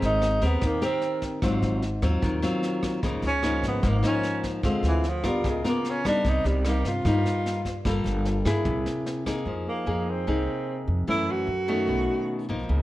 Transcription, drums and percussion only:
0.02 snare
0.22 cross-stick, snare
0.42 kick, snare
0.61 kick, cross-stick, snare
0.82 snare
1.01 snare
1.22 kick, snare
1.42 kick, cross-stick, snare
1.62 snare
1.82 snare
2.02 kick, cross-stick, snare
2.23 kick, snare
2.43 snare
2.63 snare
2.83 kick, cross-stick, snare
3.03 kick, snare
3.23 snare
3.43 cross-stick, snare
3.63 kick, snare
3.83 kick, cross-stick, snare
4.03 snare
4.23 snare
4.43 kick, snare
4.63 kick, cross-stick, snare
4.84 snare
5.04 snare
5.24 kick, cross-stick, snare
5.44 kick, snare
5.65 snare
5.85 snare
6.05 kick, cross-stick, snare
6.25 kick, snare
6.45 snare
6.65 cross-stick, snare
6.85 kick, snare
7.05 kick, cross-stick, snare
7.26 snare
7.46 snare
7.65 kick, snare
7.85 kick, cross-stick, snare
8.06 snare
8.25 snare
8.45 kick, cross-stick, snare
8.65 kick, snare
8.86 snare
9.06 snare
9.26 kick, cross-stick, snare

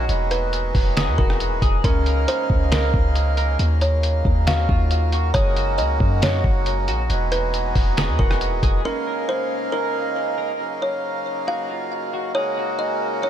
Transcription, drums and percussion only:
0.09 closed hi-hat
0.31 closed hi-hat
0.53 closed hi-hat
0.75 kick, open hi-hat
0.97 snare, closed hi-hat
1.19 kick
1.30 cross-stick
1.40 closed hi-hat
1.62 kick, closed hi-hat
1.84 kick, closed hi-hat
2.06 closed hi-hat
2.28 closed hi-hat
2.50 kick
2.72 snare, closed hi-hat
2.94 kick
3.15 closed hi-hat
3.37 closed hi-hat
3.59 closed hi-hat
3.81 closed hi-hat
4.03 closed hi-hat
4.25 kick
4.47 snare, closed hi-hat
4.69 kick
4.91 closed hi-hat
5.12 closed hi-hat
5.35 kick, closed hi-hat
5.56 closed hi-hat
5.79 closed hi-hat
6.00 kick
6.22 snare, closed hi-hat
6.44 kick
6.66 closed hi-hat
6.88 closed hi-hat
7.10 closed hi-hat
7.32 closed hi-hat
7.54 closed hi-hat
7.75 kick, open hi-hat
7.97 snare, closed hi-hat
8.19 kick
8.31 cross-stick
8.41 closed hi-hat
8.63 kick, closed hi-hat

